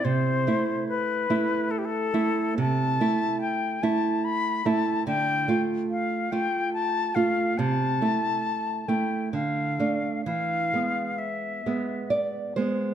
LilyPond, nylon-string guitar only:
\new Staff \with { instrumentName = "Nylon-string guitar" } { \time 3/4 \key a \minor \tempo 4 = 71 << { r2. | r2. | r2. | r2. |
r2 d''8 c''8 | } \\ { c8 <a e'>4 <a e'>4 <a e'>8 | c8 <a e'>4 <a e'>4 <a e'>8 | d8 <a f'>4 <a f'>4 <a f'>8 | c8 <a e'>4 <a e'>8 d8 <a d'>8 |
e8 <gis b>4 <gis b>4 <gis b>8 | } >> }